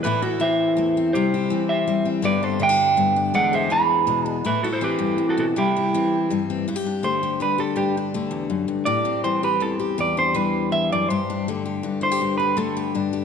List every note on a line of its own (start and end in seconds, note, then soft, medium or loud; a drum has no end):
0.03 0.77 A2 medium
0.03 0.39 E3 medium
0.03 0.77 A3 medium
0.03 0.21 E4 medium
0.03 0.22 B4 medium
0.03 muted steel-string acoustic guitar stroke medium
0.22 1.33 E4 medium
0.22 0.39 F#4 medium
0.22 0.41 A4 medium
0.40 1.11 E3 medium
0.40 0.95 C4 medium
0.40 1.11 C5 medium
0.40 1.10 E5 medium
0.77 1.14 E2 medium
0.77 1.12 A3 medium
0.97 1.12 C4 medium
1.13 1.51 C3 medium
1.13 1.86 G3 medium
1.13 1.65 G4 medium
1.13 1.69 C5 medium
1.34 2.24 E4 medium
1.50 2.22 E3 medium
1.50 2.04 C4 medium
1.69 2.08 C5 medium
1.69 2.08 E5 medium
1.87 2.23 G3 medium
2.05 2.22 C4 medium
2.22 2.96 G2 medium
2.22 2.58 D3 medium
2.22 2.59 B3 medium
2.22 2.60 D4 medium
2.22 2.41 G4 medium
2.22 2.42 B4 medium
2.22 2.44 D5 medium
2.43 3.33 G4 medium
2.43 2.61 A4 medium
2.43 2.62 C5 medium
2.60 3.70 D3 medium
2.60 2.69 B3 medium
2.60 3.31 E5 medium
2.60 3.35 G5 medium
2.69 3.15 D4 soft
2.97 3.32 G2 medium
2.97 3.32 B3 medium
3.16 3.33 D4 medium
3.34 4.45 E2 medium
3.34 4.06 G#3 medium
3.34 3.52 D5 medium
3.34 3.54 F#5 loud
3.53 4.43 G#4 medium
3.53 3.71 C5 medium
3.53 3.71 E5 medium
3.70 4.42 E3 medium
3.70 4.25 D4 medium
3.70 4.41 G#5 medium
3.70 4.28 B5 loud
4.07 4.42 B2 medium
4.07 4.43 G#3 medium
4.26 4.43 D4 medium
4.26 4.46 A5 loud
4.45 5.17 A2 medium
4.45 5.54 A3 medium
4.45 4.63 E4 medium
4.45 4.63 B4 medium
4.63 5.75 E4 medium
4.63 4.67 F#4 medium
4.63 4.68 A4 medium
4.73 4.81 A4 medium
4.73 4.83 C5 medium
4.81 5.53 E3 medium
4.81 5.54 C4 medium
4.81 5.26 G4 medium
4.81 5.26 B4 medium
4.99 5.18 G2 medium
5.18 5.37 A2 medium
5.29 5.37 F#4 medium
5.29 5.39 A4 medium
5.37 5.56 B2 medium
5.37 5.44 F#4 medium
5.37 5.45 A4 medium
5.56 5.93 C3 medium
5.56 6.30 G3 medium
5.56 6.27 E4 medium
5.56 6.31 G4 medium
5.77 6.66 E4 medium
5.94 6.65 E3 medium
5.94 6.49 C4 medium
6.30 6.65 G2 medium
6.30 7.04 G3 medium
6.50 6.65 C4 medium
6.68 7.39 G2 medium
6.68 6.76 E4 medium
6.76 7.22 G4 medium
6.86 7.40 D4 medium
7.03 8.13 D3 medium
7.03 8.14 A3 medium
7.03 7.38 C5 medium
7.23 7.58 G4 medium
7.40 7.75 G2 medium
7.40 7.75 D4 medium
7.40 7.59 B4 medium
7.58 8.87 G4 medium
7.58 7.77 A4 medium
7.76 8.30 G2 medium
7.76 7.95 D4 medium
7.76 7.95 G4 medium
7.97 8.87 D4 medium
8.14 8.88 D3 medium
8.14 8.86 A3 medium
8.31 8.49 E2 medium
8.50 8.67 F#2 medium
8.68 8.87 G2 medium
8.85 9.61 A2 medium
8.85 9.43 G4 medium
8.85 9.21 D5 medium
9.05 9.59 C4 medium
9.24 9.96 E3 medium
9.24 10.35 G3 soft
9.24 9.42 C5 medium
9.43 9.79 G4 medium
9.43 9.62 B4 medium
9.60 9.97 E2 medium
9.60 9.96 C4 soft
9.60 9.73 A4 medium
9.79 9.98 G4 medium
9.98 10.71 E2 medium
9.98 11.11 G4 medium
9.98 10.18 D5 medium
10.17 11.07 D4 medium
10.17 10.37 C5 medium
10.34 11.07 E3 medium
10.34 11.48 G3 medium
10.34 10.72 B4 medium
10.72 10.91 E2 medium
10.72 10.90 E5 loud
10.92 11.10 F#2 medium
10.92 11.09 D5 medium
11.09 11.82 G2 medium
11.09 11.65 G4 medium
11.09 11.46 C5 medium
11.30 11.83 D4 medium
11.48 12.55 D3 medium
11.48 12.56 A3 medium
11.66 12.01 G4 medium
11.83 12.20 G2 medium
11.83 12.38 D4 medium
12.01 12.12 E4 medium
12.01 12.37 C5 medium
12.12 12.20 G4 medium
12.21 12.93 G2 medium
12.21 12.76 G4 medium
12.38 12.94 D4 medium
12.38 12.56 B4 medium
12.57 13.24 D3 medium
12.57 13.24 A3 medium
12.57 12.75 A4 medium
12.77 13.12 G4 medium
12.95 13.24 G2 medium
12.95 13.24 D4 medium
13.13 13.24 G4 medium